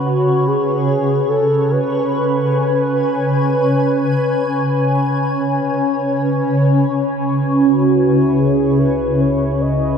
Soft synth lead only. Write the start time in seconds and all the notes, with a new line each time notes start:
0.06 F#4
0.47 G#4
1.29 A4
1.71 B4
7.55 F#4
8.39 G#4
8.79 B4
9.20 C#5
9.61 D#5